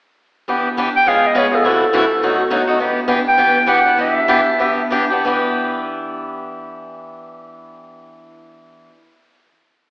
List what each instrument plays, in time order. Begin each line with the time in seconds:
0.48 steel-string acoustic guitar E3 B3 D4 G4
0.77 steel-string acoustic guitar E3 B3 D4 G4
0.97 clarinet G5
1.06 steel-string acoustic guitar C#3 G#3 B3 F4 G#4, clarinet F5
1.27 clarinet D#5
1.35 steel-string acoustic guitar C#3 G#3 B3 F4 G#4, clarinet C#5
1.52 steel-string acoustic guitar B3 F4 G#4, clarinet A4
1.64 steel-string acoustic guitar F#2 C3 E3 A3 E4 F#4
1.93 steel-string acoustic guitar F#2 C3 E3 A3 E4 F#4
2.22 steel-string acoustic guitar B2 F#3 A3 D#4 F#4
2.50 steel-string acoustic guitar B2 F#3 A3 D#4 F#4
2.67 steel-string acoustic guitar A3 D#4 F#4
2.79 steel-string acoustic guitar E3 B3 D4 G4
3.08 steel-string acoustic guitar E3 B3 D4 G4
3.28 clarinet G5
3.38 steel-string acoustic guitar E3 B3 D4 G4
3.66 steel-string acoustic guitar E3 B3 D4 G4, clarinet F#5
3.84 steel-string acoustic guitar B3 D4 G4
3.98 steel-string acoustic guitar E3 B3 D4 G4, clarinet E5
4.28 steel-string acoustic guitar E3 B3 D4 G4
4.59 steel-string acoustic guitar E3 B3 D4 G4
4.90 steel-string acoustic guitar E3 B3 D4 G4
5.10 steel-string acoustic guitar B3 D4 G4
5.25 steel-string acoustic guitar E3 B3 D4 G4